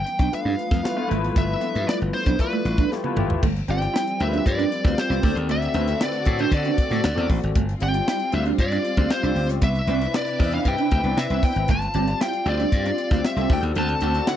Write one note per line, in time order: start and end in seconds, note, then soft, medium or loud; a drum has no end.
0.00 3.39 F3 medium
0.00 3.39 G3 medium
0.00 3.39 B3 medium
0.00 0.33 G5 loud
0.06 muted clean electric guitar stroke soft
0.06 closed hi-hat medium
0.19 0.28 B1 medium
0.19 0.27 D4 medium
0.19 kick medium
0.19 closed hi-hat soft
0.31 0.65 A3 medium
0.31 0.65 D4 medium
0.31 0.65 F4 medium
0.31 0.65 B4 medium
0.31 1.07 F5 medium
0.31 closed hi-hat medium
0.45 0.54 G2 medium
0.45 0.53 D4 medium
0.58 muted clean electric guitar stroke soft
0.58 closed hi-hat medium
0.71 0.80 F2 medium
0.71 0.79 A3 medium
0.71 kick loud
0.71 snare soft
0.71 closed hi-hat soft
0.83 0.92 A3 medium
0.83 0.92 E4 medium
0.83 0.92 F4 medium
0.83 0.92 B4 medium
0.83 muted clean electric guitar stroke soft
0.83 snare loud
0.96 1.05 A3 medium
0.96 1.04 B3 medium
0.96 1.05 E4 medium
0.96 1.05 F4 medium
0.96 1.05 B4 medium
1.08 1.29 G#1 medium
1.08 1.75 A3 medium
1.08 1.17 A3 medium
1.08 1.75 E4 medium
1.08 1.75 F4 medium
1.08 1.75 B4 loud
1.08 closed hi-hat medium
1.24 closed hi-hat medium
1.36 1.54 G1 loud
1.36 1.43 A3 medium
1.36 1.88 E5 loud
1.36 kick loud
1.36 closed hi-hat medium
1.61 1.69 B3 medium
1.61 closed hi-hat medium
1.75 1.84 G2 medium
1.75 muted clean electric guitar stroke soft
1.75 closed hi-hat soft
1.87 1.95 E4 medium
1.87 1.95 D5 loud
1.87 snare loud
2.01 2.10 G1 medium
2.01 closed hi-hat soft
2.13 2.40 C5 medium
2.13 muted clean electric guitar stroke soft
2.13 open hi-hat medium
2.26 2.35 B1 medium
2.26 2.34 D4 medium
2.26 kick medium
2.26 closed hi-hat medium
2.39 2.72 A3 medium
2.39 2.72 E4 medium
2.39 2.73 F4 medium
2.39 2.88 B4 medium
2.39 2.73 D5 medium
2.39 kick medium
2.39 closed hi-hat medium
2.53 2.60 A3 medium
2.53 closed hi-hat soft
2.65 2.83 A1 medium
2.65 muted clean electric guitar stroke soft
2.65 closed hi-hat medium
2.78 2.86 D4 medium
2.78 kick medium
2.78 closed hi-hat soft
2.91 3.00 A3 medium
2.91 3.00 E4 medium
2.91 3.00 F4 medium
2.91 3.00 G4 medium
2.91 muted clean electric guitar stroke soft
2.91 snare medium
3.04 3.13 A3 medium
3.04 3.11 B3 medium
3.04 3.13 E4 medium
3.04 3.13 F4 medium
3.04 3.13 B4 medium
3.04 high tom medium
3.16 3.35 G#1 medium
3.16 3.24 A3 medium
3.16 3.43 A3 medium
3.16 3.43 E4 medium
3.16 3.44 F4 medium
3.16 3.44 G4 loud
3.16 mid tom medium
3.30 floor tom medium
3.43 3.61 G1 loud
3.43 5.22 F3 medium
3.43 5.22 G3 medium
3.43 3.50 A3 medium
3.43 7.01 C4 medium
3.43 kick loud
3.43 crash medium
3.56 closed hi-hat soft
3.68 3.87 G1 medium
3.68 3.76 C4 medium
3.68 4.02 C4 medium
3.68 4.02 F4 medium
3.68 4.02 G4 medium
3.68 4.02 D5 medium
3.68 4.23 G5 loud
3.68 closed hi-hat medium
3.82 muted clean electric guitar stroke soft
3.82 closed hi-hat medium
3.94 4.01 E4 medium
3.94 snare loud
4.07 closed hi-hat medium
4.20 4.38 D2 medium
4.20 4.61 C4 medium
4.20 4.62 F4 medium
4.20 4.62 G4 medium
4.20 4.27 A#4 medium
4.20 4.47 E5 medium
4.20 muted clean electric guitar stroke soft
4.20 closed hi-hat medium
4.28 4.65 B4 medium
4.33 4.40 D4 medium
4.33 closed hi-hat medium
4.46 4.64 G2 loud
4.46 5.00 D5 medium
4.46 kick medium
4.46 closed hi-hat medium
4.59 4.66 D4 medium
4.59 closed hi-hat medium
4.72 muted clean electric guitar stroke soft
4.72 closed hi-hat medium
4.84 4.93 D2 medium
4.84 4.92 A3 medium
4.84 5.01 C4 medium
4.84 5.01 F4 medium
4.84 5.01 G4 medium
4.84 5.02 F5 medium
4.84 kick loud
4.84 snare soft
4.84 closed hi-hat soft
4.98 5.35 C5 medium
4.98 muted clean electric guitar stroke soft
4.98 snare loud
5.10 5.19 C2 medium
5.10 5.22 C4 medium
5.10 5.18 C4 medium
5.10 5.23 F4 medium
5.10 5.24 G4 medium
5.10 5.23 D5 medium
5.10 closed hi-hat medium
5.23 5.32 D2 medium
5.23 7.54 D3 medium
5.23 7.53 A3 medium
5.23 5.31 A3 medium
5.23 5.65 C4 medium
5.23 5.64 F#4 medium
5.23 7.53 F#4 medium
5.23 5.65 A4 medium
5.23 5.65 D5 medium
5.23 kick loud
5.23 open hi-hat medium
5.36 5.48 D#2 medium
5.36 closed hi-hat medium
5.48 5.67 D2 loud
5.48 5.57 A3 medium
5.48 5.98 E5 medium
5.48 closed hi-hat medium
5.62 closed hi-hat soft
5.74 5.93 D2 loud
5.74 6.07 C4 medium
5.74 5.83 C4 medium
5.74 6.07 F#4 medium
5.74 6.08 A4 medium
5.74 6.08 B4 medium
5.74 closed hi-hat medium
5.88 muted clean electric guitar stroke soft
5.88 closed hi-hat medium
6.01 6.08 E4 medium
6.01 6.42 D5 medium
6.01 snare loud
6.13 closed hi-hat medium
6.25 6.45 A2 medium
6.25 6.67 C4 medium
6.25 6.67 F#4 medium
6.25 6.68 A4 medium
6.25 6.68 D5 medium
6.25 muted clean electric guitar stroke soft
6.25 kick medium
6.25 closed hi-hat medium
6.39 6.47 D4 medium
6.39 6.52 C5 medium
6.39 closed hi-hat medium
6.51 6.70 D3 loud
6.51 7.27 D5 medium
6.51 kick medium
6.51 closed hi-hat medium
6.65 6.73 D4 medium
6.65 closed hi-hat medium
6.78 muted clean electric guitar stroke soft
6.78 kick medium
6.78 closed hi-hat medium
6.90 7.00 A2 medium
6.90 6.99 A3 medium
6.90 7.03 C4 medium
6.90 7.04 F#4 medium
6.90 7.04 A4 medium
6.90 7.04 D5 medium
6.90 snare soft
6.90 closed hi-hat soft
7.04 7.13 D2 loud
7.04 9.60 C4 medium
7.04 muted clean electric guitar stroke soft
7.04 snare loud
7.15 7.26 E2 medium
7.15 7.55 C4 medium
7.15 7.25 C4 medium
7.15 7.55 F#4 medium
7.15 7.55 A4 medium
7.15 7.55 D5 loud
7.15 closed hi-hat medium
7.30 7.39 A1 medium
7.30 7.37 A3 medium
7.30 kick medium
7.30 open hi-hat medium
7.43 7.52 G#1 medium
7.43 closed hi-hat medium
7.55 7.74 G1 medium
7.55 9.60 G3 medium
7.55 7.63 A3 medium
7.55 9.60 F4 medium
7.55 kick loud
7.55 closed hi-hat medium
7.69 closed hi-hat medium
7.80 8.00 G1 loud
7.80 8.14 C4 medium
7.80 7.89 C4 medium
7.80 8.14 F4 medium
7.80 8.15 G4 medium
7.80 8.15 D5 medium
7.80 8.35 G5 medium
7.80 closed hi-hat medium
7.94 muted clean electric guitar stroke soft
7.94 closed hi-hat medium
8.08 8.15 E4 medium
8.08 snare loud
8.19 closed hi-hat medium
8.32 8.51 D2 medium
8.32 8.74 C4 medium
8.32 8.74 F4 medium
8.32 8.74 G4 medium
8.32 8.41 E5 medium
8.32 8.74 F5 medium
8.32 muted clean electric guitar stroke soft
8.32 closed hi-hat medium
8.46 8.54 D4 medium
8.46 closed hi-hat soft
8.58 8.77 G2 loud
8.58 9.13 D5 medium
8.58 kick medium
8.58 closed hi-hat medium
8.72 8.80 D4 medium
8.72 closed hi-hat medium
8.85 muted clean electric guitar stroke soft
8.85 closed hi-hat medium
8.97 9.07 D2 medium
8.97 9.14 C4 medium
8.97 9.05 C4 medium
8.97 9.14 F4 medium
8.97 9.14 G4 medium
8.97 9.14 F5 medium
8.97 kick medium
8.97 closed hi-hat soft
9.10 9.47 C5 medium
9.10 muted clean electric guitar stroke soft
9.10 snare loud
9.23 9.32 C2 medium
9.23 9.62 C4 medium
9.23 9.31 D4 medium
9.23 9.62 F4 medium
9.23 9.63 G4 medium
9.23 9.63 D5 medium
9.23 closed hi-hat medium
9.35 9.48 D2 medium
9.35 9.44 C4 medium
9.35 open hi-hat medium
9.48 9.58 C#2 medium
9.48 snare soft
9.48 closed hi-hat medium
9.62 9.80 C2 loud
9.62 11.67 C3 medium
9.62 9.69 B3 loud
9.62 11.67 D4 medium
9.62 11.67 E4 medium
9.62 11.67 B4 medium
9.62 10.16 E5 medium
9.62 kick loud
9.62 closed hi-hat medium
9.75 closed hi-hat soft
9.87 10.06 C2 medium
9.87 10.21 C4 medium
9.87 9.96 C4 medium
9.87 10.21 E4 medium
9.87 10.21 B4 medium
9.87 10.22 D5 medium
9.87 closed hi-hat medium
10.01 muted clean electric guitar stroke soft
10.01 closed hi-hat medium
10.14 10.22 E4 medium
10.14 10.54 D5 medium
10.14 snare loud
10.26 closed hi-hat medium
10.39 10.58 E2 medium
10.39 10.80 C4 medium
10.39 10.81 E4 medium
10.39 10.81 B4 medium
10.39 10.46 D#5 medium
10.39 muted clean electric guitar stroke soft
10.39 kick loud
10.39 open hi-hat medium
10.46 10.84 E5 medium
10.52 10.61 D4 medium
10.52 10.67 F5 medium
10.52 closed hi-hat medium
10.65 10.74 G2 medium
10.65 11.20 G5 medium
10.65 kick medium
10.65 closed hi-hat medium
10.78 10.86 D4 medium
10.78 closed hi-hat medium
10.91 11.01 D2 medium
10.91 muted clean electric guitar stroke soft
10.91 kick medium
10.91 closed hi-hat medium
11.03 11.13 C2 medium
11.03 11.12 B3 medium
11.03 11.21 C4 medium
11.03 11.21 E4 medium
11.03 11.22 B4 medium
11.03 11.21 D5 medium
11.03 closed hi-hat soft
11.17 11.26 C3 medium
11.17 11.44 E5 medium
11.17 muted clean electric guitar stroke soft
11.17 snare loud
11.30 11.39 C2 medium
11.30 11.69 C4 medium
11.30 11.38 C4 medium
11.30 11.69 E4 medium
11.30 11.70 B4 medium
11.30 11.70 E5 medium
11.30 closed hi-hat medium
11.43 11.51 B3 medium
11.43 11.70 G5 medium
11.43 kick medium
11.43 open hi-hat medium
11.56 11.65 G#1 medium
11.56 closed hi-hat medium
11.68 11.87 G1 loud
11.68 13.48 G3 medium
11.68 11.76 A3 medium
11.68 14.37 C4 medium
11.68 13.48 F4 medium
11.68 12.21 A5 loud
11.68 kick loud
11.68 closed hi-hat medium
11.82 closed hi-hat soft
11.94 12.13 G1 medium
11.94 12.27 C4 medium
11.94 12.02 C4 medium
11.94 12.28 F4 medium
11.94 12.28 G4 medium
11.94 12.28 D5 medium
11.94 closed hi-hat medium
12.08 muted clean electric guitar stroke soft
12.08 closed hi-hat medium
12.21 12.28 E4 medium
12.21 12.48 G5 medium
12.21 snare loud
12.33 closed hi-hat medium
12.45 12.64 D2 medium
12.45 12.87 C4 medium
12.45 12.87 F4 medium
12.45 12.87 G4 medium
12.45 12.88 D5 medium
12.45 13.26 D5 loud
12.45 muted clean electric guitar stroke soft
12.45 closed hi-hat medium
12.60 12.67 D4 medium
12.60 closed hi-hat medium
12.72 12.90 G2 loud
12.72 kick medium
12.72 closed hi-hat medium
12.86 12.93 D4 medium
12.86 closed hi-hat medium
12.98 muted clean electric guitar stroke soft
12.98 closed hi-hat medium
13.11 13.20 D2 medium
13.11 13.19 A3 medium
13.11 13.27 C4 medium
13.11 13.28 F4 medium
13.11 13.28 G4 medium
13.11 13.28 F5 medium
13.11 kick loud
13.11 snare soft
13.11 closed hi-hat soft
13.24 13.52 E5 medium
13.24 muted clean electric guitar stroke soft
13.24 snare loud
13.36 13.46 C2 medium
13.36 13.49 C4 medium
13.36 13.45 C4 medium
13.36 13.50 F4 medium
13.36 13.50 G4 medium
13.36 13.49 A4 medium
13.36 closed hi-hat medium
13.49 13.59 D2 medium
13.49 14.37 D3 medium
13.49 14.37 A3 medium
13.49 13.58 A3 medium
13.49 13.91 C4 medium
13.49 13.56 E4 medium
13.49 14.37 F#4 medium
13.49 13.91 A4 medium
13.49 13.92 D5 medium
13.49 13.60 G5 medium
13.49 kick loud
13.49 open hi-hat medium
13.56 13.94 F#4 medium
13.63 13.72 D#2 medium
13.63 closed hi-hat medium
13.75 13.94 D2 loud
13.75 13.84 A3 loud
13.75 14.28 A5 loud
13.75 closed hi-hat medium
13.89 closed hi-hat soft
14.01 14.20 D2 loud
14.01 14.34 C4 medium
14.01 14.10 C4 medium
14.01 14.35 F#4 medium
14.01 14.35 A4 medium
14.01 14.35 D5 medium
14.01 closed hi-hat medium
14.14 muted clean electric guitar stroke soft
14.14 closed hi-hat medium
14.27 14.35 E4 medium
14.27 14.37 F#5 medium
14.27 snare loud